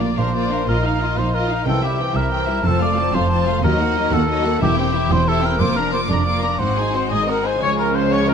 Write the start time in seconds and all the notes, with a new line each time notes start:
Already playing: A#1 A#2 F3 A#3 F4 D5 F5
0.01 A#3 F4 D5
0.18 A#1 A#2 D4 A#4 C5 F5
0.34 A#3 F4 A#4 D5
0.50 D4 A#4 D5 F5
0.67 A#1 A#2 F4 A#4 D#5
0.83 A#3 D#4 A#4 F5
1.00 F4 D#5
1.16 A#1 A#2 D#4 C5 F5
1.33 F4 A#4 D#5
1.50 D#4 D#5 F5
1.66 C2 C3 E3 C4 A4 G5
1.82 G3 C4 E4 G4 E5
1.99 E3 C4 E5 G5
2.15 C2 C3 G3 E4 A#4 C5 E5
2.31 E3 C4 E5 G5
2.47 G3 E4 E5
2.64 F1 F2 F3 C4 A4 A5
2.81 A3 F4 D5 F5
2.97 F3 C4 C5 A5
3.13 F1 F2 A3 F4 C5 F5 A5
3.30 F3 C4 F5 A5
3.47 A3 F4 C5 F5
3.62 D#2 D#3 F#3 D#4 A#4 D#5
3.79 A#3 D#4 F#4 F#5
3.95 F#3 A#3 D#4 D#5
4.11 D#2 A#3 F#4 A4 F#5
4.28 F#3 D#4 D#5
4.44 A#3 F#4 A#4 F#5
4.61 E1 E2 E3 E4 G4 E5
4.77 C4 E4 G4 G5
4.94 E4 G4 C5 E5
5.09 E1 E2 C4 E4 C5 G5
5.26 E4 G4 A4 C5 E5
5.43 C4 E4 G4 A#4 G5
5.59 F1 F2 F3 A#3 F4 C5 D6
5.76 D4 F4 A#4 A#5
5.93 A#3 F4 C5 D5 D6
6.09 F1 F2 D4 A#4 D5 A#5
6.26 A#3 F4 F5 D6
6.42 D4 A#4 D5 A#5
6.59 G#1 G#2 C4 F#4 C5 F#5
6.77 D#4 F#4 G#4 G#5
6.93 C4 F#4 C5 D#5 F#5 C6
7.10 G#1 G#2 D#4 G#4 D#5 G#5 D#6
7.27 C4 F#4 A#4 F#5 A#5
7.44 D#4 G#4 C5 D#5 G#5 C6
7.61 C#2 C#3 F3 G#3 C#4 F4 G#4 C#5 C#6
7.78 F4 A#4 A#5
7.94 G#4 C5 C6
8.11 C#5 C#6
8.28 G#4 A#4 A#5